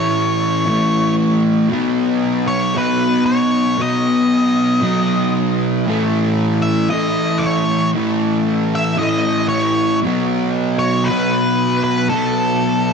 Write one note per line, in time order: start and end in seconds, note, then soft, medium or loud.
0.00 0.64 A2 medium
0.00 0.65 E3 medium
0.00 0.70 A3 loud
0.00 1.15 C#5 loud
0.66 1.69 A2 medium
0.66 1.70 E3 medium
0.66 1.72 A3 medium
1.69 2.74 B2 medium
1.69 2.75 F#3 medium
1.74 2.77 B3 loud
2.48 2.75 C#5 medium
2.75 3.77 B2 medium
2.75 3.78 F#3 medium
2.75 3.82 B3 medium
2.75 3.25 B4 loud
3.26 3.80 C#5 medium
3.78 4.80 B2 medium
3.78 4.81 F#3 medium
3.78 5.33 D#5 loud
3.82 4.84 B3 medium
4.81 5.85 B2 medium
4.81 5.86 F#3 medium
4.81 5.89 B3 medium
5.86 6.90 A2 medium
5.86 6.92 E3 medium
5.86 6.93 A3 medium
6.62 6.90 E5 medium
6.90 7.93 A2 medium
6.90 7.95 E3 medium
6.90 7.97 A3 medium
6.90 7.45 D#5 loud
7.39 7.90 C#5 medium
7.94 8.96 A2 medium
7.94 8.98 E3 medium
7.94 9.01 A3 medium
8.75 8.98 E5 loud
8.97 10.01 A2 medium
8.97 10.02 E3 medium
8.97 9.48 D#5 loud
9.01 10.06 A3 medium
9.49 9.99 C#5 medium
10.03 11.07 B2 medium
10.03 11.10 F#3 medium
10.03 11.11 B3 loud
10.79 11.07 C#5 loud
11.05 12.10 B2 medium
11.05 11.83 B4 loud
11.10 12.13 F#3 medium
11.10 12.14 B3 medium
11.84 12.09 B4 medium
12.09 12.93 B2 medium
12.09 12.93 F#3 medium
12.09 12.93 A4 medium
12.14 12.93 B3 medium